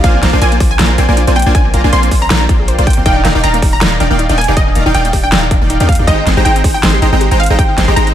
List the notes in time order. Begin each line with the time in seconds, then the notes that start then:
0.04 A#1 A#3 D4 F4 C5 D5 F5 G#5, kick, closed hi-hat
0.14 C4
0.23 A#1 A#3 F4 C5 D5 A#5, snare, closed hi-hat
0.33 A#1 A#3 D4 F4 C5 D5 G#5
0.42 A#1 A#3 C4 F4 C5 D5 G#5, closed hi-hat
0.52 A#3, closed hi-hat
0.60 A#1 A#3 F4 C5 D5 G#5, kick, open hi-hat
0.71 C4 G#5
0.79 A#1 A#3 F4 C5 D5 A#5, snare, closed hi-hat
0.90 D4
0.98 A#1 A#3 C4 F4 C5 D5 G#5, closed hi-hat
1.09 A#1 A#3 F4 C5 D5 G#5
1.17 D4, closed hi-hat
1.27 A#1 A#3 C4 F4 C5 D5 G#5, closed hi-hat
1.36 A#3 G5, closed hi-hat
1.39 closed hi-hat
1.42 closed hi-hat
1.46 A#1 A#3 D4 F4 C5 D5 G#5
1.55 A#1 D4 F4 D5 G#5, kick, closed hi-hat
1.65 C4
1.74 A#1 A#3 F4 C5 D5 A#5, closed hi-hat
1.84 A#1 A#3 D4 F4 C5 D5 G#5
1.93 A#1 A#3 C4 F4 C5 D5 G#5 C6, closed hi-hat
2.03 A#3, closed hi-hat
2.11 A#1 A#3 F4 C5 G#5, kick, open hi-hat
2.22 C4 A#5
2.30 A#1 A#3 F4 C5 D5 A#5, snare, closed hi-hat
2.41 D4
2.49 A#1 A#3 F4 C5 D5 G5, kick, closed hi-hat
2.60 G#4
2.68 C5, closed hi-hat
2.78 A#1 A#3 F4 C5 D5 C6, closed hi-hat
2.87 A#3 G5, kick, closed hi-hat
2.90 closed hi-hat
2.93 closed hi-hat
2.97 A#1 A#3 C4 F4 C5 D5 C6
3.06 D#1 D#3 D#4 D5 F5 G5, kick, closed hi-hat
3.16 D4
3.25 D#1 D#3 A#3 D#4 D5 F5 A#5, snare, closed hi-hat
3.35 D#1 D#3 D#4 D5 F5 G5
3.43 D#1 D#3 D4 D#4 D5 F5 G5 A#5, closed hi-hat
3.54 A#3, closed hi-hat
3.62 D#1 D#3 D#4 G4, kick, open hi-hat
3.73 D4 A#5
3.81 D#1 D#3 A#3 D#4 D5 F5 A#5, snare, closed hi-hat
3.92 D#4
4.00 D#1 D#3 D4 D#4 D5 F5 G5, closed hi-hat
4.10 D#1 D#3 A#3 D#4 D5 F5 G5
4.19 D#4, closed hi-hat
4.29 D#1 D#3 D4 D#4 D5 F5 G5, closed hi-hat
4.38 A#3 G#5, closed hi-hat
4.41 closed hi-hat
4.44 closed hi-hat
4.48 D#1 D#3 D#4 G4 D5 F5 G5
4.57 D#3 D#4 D#5 G5, kick, closed hi-hat
4.67 D4
4.75 D#1 D#3 A#3 D#4 D5 F5 A#5, closed hi-hat
4.86 D#1 D#3 D#4 D5 F5 G5
4.94 D#1 D#3 D4 D#4 D5 F5 G5, closed hi-hat
5.05 A#3, closed hi-hat
5.13 D#1 D#3 D#4 G4 D5 G5, kick, open hi-hat
5.24 D4 G5
5.32 D#1 D#3 A#3 D#4 D5 F5 A#5, snare, closed hi-hat
5.42 D#4
5.51 D#1 D#3 D4 D#4 D5 F5 G5, kick, closed hi-hat
5.61 D#1 D#3 A#3 D#4 D5 F5 G5
5.70 D#4, closed hi-hat
5.80 D#2 D#3 D4 D#4 D5 F5 G5, closed hi-hat
5.89 A#3 F5, kick, closed hi-hat
5.92 closed hi-hat
5.95 closed hi-hat
5.99 D#2 D#3 D#4 G4 D5 F5 G5
6.07 G#1 G#3 D#4 G4 C5 D#5 G5 A#5, kick, closed hi-hat
6.18 D#4
6.27 G#1 G#3 C4 D#4 C5 G5 C6, snare, closed hi-hat
6.37 G#1 G#3 D#4 G4 C5 G5 A#5
6.45 G#1 G#3 D#4 C5 G5 A#5, closed hi-hat
6.56 C4, closed hi-hat
6.64 G#1 G#3 D#4 G#4 C5 G5 A#5, kick, open hi-hat
6.74 D#4 G5
6.83 G#1 G#3 C4 D#4 C5 G5 C6, snare, closed hi-hat
6.93 G4
7.02 G#1 G#3 D#4 C5 G5 A#5, closed hi-hat
7.12 G#1 G#3 C4 D#4 C5 G5 A#5
7.21 G4, closed hi-hat
7.31 G#1 G#3 D#4 C5 G5 A#5, closed hi-hat
7.40 C4 F5, closed hi-hat
7.43 closed hi-hat
7.46 G#1 G#3, closed hi-hat
7.50 D#4 G#4 C5 G5 A#5
7.59 G#1 G#3 D#4 G4 C5 G5, kick, closed hi-hat
7.69 D#4
7.78 G#1 G#3 C4 D#4 C5 G5 C6, snare, closed hi-hat
7.88 G#1 G#3 D#4 G4 C5 G5 A#5
7.96 G#1 G#3 D#4 C5 G5 A#5, closed hi-hat
8.07 C4, closed hi-hat